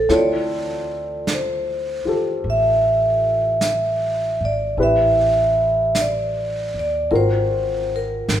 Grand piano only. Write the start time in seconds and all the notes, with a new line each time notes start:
0.09 C4 E4 F4 A4
2.05 F4 G4 A4
4.78 C4 E4 G4 B4
7.11 C4 F4 F#4 A#4